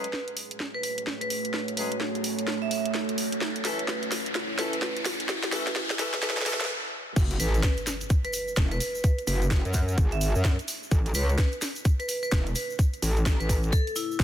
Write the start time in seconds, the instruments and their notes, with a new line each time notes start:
Already playing: ambient pad A3 F#4 G#4 C#5, vibraphone B4, riser
0.04 closed hi-hat
0.13 snare
0.28 closed hi-hat
0.37 open hi-hat
0.51 closed hi-hat
0.60 snare
0.74 vibraphone B4
0.83 vibraphone B4, open hi-hat
0.98 closed hi-hat
1.07 snare
1.21 vibraphone B4, closed hi-hat
1.30 open hi-hat
1.45 closed hi-hat
1.54 ambient pad A4, snare
1.68 closed hi-hat
1.77 horn section F#3 G#3 A3 C#4 G#4, vibraphone B4, open hi-hat
1.92 closed hi-hat
2.01 snare
2.15 closed hi-hat
2.24 open hi-hat
2.39 closed hi-hat
2.48 snare
2.62 vibraphone E5
2.71 vibraphone E5, open hi-hat
2.85 closed hi-hat
2.94 snare
3.09 closed hi-hat
3.18 open hi-hat
3.32 closed hi-hat
3.41 ambient pad C#4 E4, snare
3.56 closed hi-hat
3.65 horn section E3 A3 C#4 A4, vibraphone B4, snare, open hi-hat
3.79 closed hi-hat
3.88 snare
4.03 closed hi-hat
4.12 snare, open hi-hat
4.26 closed hi-hat
4.35 snare
4.58 horn section E3 A3 C#4 A4, vibraphone B4, snare, open hi-hat
4.73 closed hi-hat
4.82 snare
4.97 closed hi-hat
5.05 snare, open hi-hat
5.20 closed hi-hat
5.29 snare
5.43 snare, closed hi-hat
5.52 horn section E3 A3 C#4 A4, vibraphone B4, snare, open hi-hat
5.67 snare, closed hi-hat
5.76 snare
5.90 snare, closed hi-hat
5.99 horn section E3 A3 C#4 A4, vibraphone B4, snare, open hi-hat
6.14 snare, closed hi-hat
6.22 horn section E3 A3 C#4 A4, vibraphone B4, snare
6.30 snare
6.37 snare
6.42 snare
6.46 horn section E3 A3 C#4 A4, vibraphone B4, snare, open hi-hat
6.53 snare
6.61 snare, closed hi-hat
6.65 snare
7.16 wobble bass F#1, ambient pad A3 F#4 G#4 C#5, kick, closed hi-hat, crash, impact, shaker
7.31 closed hi-hat, shaker
7.40 wobble bass A1, vibraphone B4, open hi-hat, shaker
7.54 closed hi-hat, shaker
7.63 kick, snare, closed hi-hat, shaker
7.77 closed hi-hat, shaker
7.87 snare, open hi-hat, shaker
8.01 closed hi-hat, shaker
8.10 kick, closed hi-hat, shaker
8.24 vibraphone B4, closed hi-hat, shaker
8.33 vibraphone B4, open hi-hat, shaker
8.48 shaker
8.56 wobble bass E1, kick, snare, closed hi-hat, shaker
8.71 vibraphone B4, closed hi-hat, shaker
8.80 open hi-hat, shaker
8.95 shaker
9.04 kick, closed hi-hat, shaker
9.18 closed hi-hat, shaker
9.27 wobble bass F#1, vibraphone B4, open hi-hat, shaker
9.42 closed hi-hat, shaker
9.51 kick, snare, closed hi-hat, shaker
9.65 wobble bass F#2, closed hi-hat, shaker
9.73 kick, open hi-hat, shaker
9.88 closed hi-hat, shaker
9.98 wobble bass G#1, kick, closed hi-hat, shaker
10.12 vibraphone E5, closed hi-hat, shaker
10.21 vibraphone E5, open hi-hat, shaker
10.35 wobble bass F#2, shaker
10.45 kick, snare, closed hi-hat, shaker
10.59 closed hi-hat, shaker
10.68 open hi-hat, shaker
10.83 shaker
10.91 wobble bass A1, ambient pad C#4 E4, kick, closed hi-hat, shaker
11.06 closed hi-hat, shaker
11.14 wobble bass C#2, vibraphone B4, open hi-hat, shaker
11.29 closed hi-hat, shaker
11.38 kick, snare, closed hi-hat, shaker
11.52 closed hi-hat, shaker
11.62 snare, open hi-hat, shaker
11.75 closed hi-hat, shaker
11.85 kick, closed hi-hat, shaker
12.00 vibraphone B4, closed hi-hat, shaker
12.09 vibraphone B4, open hi-hat, shaker
12.23 vibraphone B4, shaker
12.31 wobble bass E1, kick, snare, closed hi-hat, shaker
12.46 closed hi-hat, shaker
12.55 vibraphone B4, open hi-hat, shaker
12.70 shaker
12.79 ambient pad F#4, kick, closed hi-hat, shaker
12.93 closed hi-hat, shaker
13.02 wobble bass A1, open hi-hat, shaker
13.16 closed hi-hat, shaker
13.26 kick, snare, closed hi-hat, shaker
13.40 wobble bass A1, vibraphone B4, closed hi-hat, shaker
13.49 kick, open hi-hat, shaker
13.63 closed hi-hat, shaker
13.72 vibraphone A4, kick, closed hi-hat, shaker
13.87 closed hi-hat, shaker
13.96 vibraphone E4, open hi-hat, shaker
14.11 shaker
14.20 wobble bass A1, kick, snare, closed hi-hat, shaker